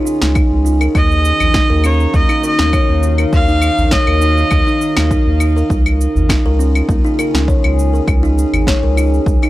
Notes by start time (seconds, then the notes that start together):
Already playing: C#3 C#4 F4 G#4 G#5
0.05 D#4, shaker
0.22 C#2, snare, shaker
0.35 D#4, kick, claves, shaker
0.52 C#2
0.65 D#4, shaker
0.81 A#4, claves, shaker
0.95 D#2 D#3 D#5, kick, claves, shaker
1.04 D#4
1.12 shaker
1.18 F#4
1.25 shaker
1.40 A#1, udu, claves, shaker
1.54 D#4 F5, kick, snare, shaker
1.61 A#4
1.70 D#2 A#4
1.84 C#4 C#5, claves, shaker
2.00 shaker
2.13 D#2 A#3 D#5, kick, shaker
2.29 D#4, claves, shaker
2.44 A#4 D#5, shaker
2.59 D#2 C#4, snare, shaker
2.73 C#5, kick, claves, shaker
2.89 D#2
3.03 shaker
3.18 A#4, claves, shaker
3.33 D#2 F5, kick, shaker
3.49 D#4, shaker
3.62 claves, shaker
3.78 A#1, udu, shaker
3.91 C#5 D#5, kick, snare, shaker
4.07 D#2 A#4, claves
4.21 D#4, shaker
4.37 shaker
4.51 D#2, kick, claves, shaker
4.67 D#4, shaker
4.81 D#4, shaker
4.97 D#2, snare, claves, shaker
5.11 D#4, kick, shaker
5.27 D#2
5.40 D#4, claves, shaker
5.57 A#4, shaker
5.70 C#2 C#3, kick, shaker
5.84 F4, claves, shaker
5.98 C#4, shaker
6.15 G#1, udu, shaker
6.29 D#4, kick, snare, claves, shaker
6.37 G#4 G#5
6.45 C#2 A#4
6.59 C#4, shaker
6.75 claves, shaker
6.89 C#2 A#3, kick, shaker
7.05 D#4, shaker
7.19 A#4, claves, shaker
7.34 C#2 C#4, snare, shaker
7.48 C#5, kick, shaker
7.64 C#2, claves
7.79 shaker
7.93 A#4, shaker
8.08 C#2, kick, claves, shaker
8.23 D#4, shaker
8.38 shaker
8.53 G#1, udu, claves, shaker
8.67 C#5, kick, snare, shaker
8.83 C#2 A#4
8.97 D#4, claves, shaker
9.14 shaker
9.26 C#2, kick, shaker
9.43 D#4, claves, shaker